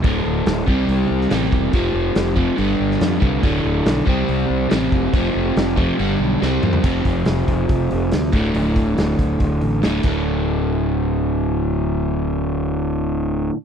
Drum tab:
CC |----------------|----------------|----------------|----------------|
HH |o---o---o---o---|o---o---o---o---|o---o---o---o---|o---o---o-------|
SD |----o------oo---|----o------oo---|----o-------o---|----o-------o---|
T2 |----------------|----------------|----------------|--------------o-|
FT |----------------|----------------|----------------|---------------o|
BD |o-----o-------o-|o-----o-------o-|o-----o-------o-|o-----o---------|

CC |x---------------|--------------x-|----------------|----------------|
HH |--o-o-o-o-o-o-o-|o-o-o-o-o-o-o---|----------------|----------------|
SD |----o-------o---|----o-------o---|----------------|----------------|
T2 |----------------|----------------|----------------|----------------|
FT |----------------|----------------|----------------|----------------|
BD |o-o---o-o-----o-|--o---o-o-----o-|----------------|----------------|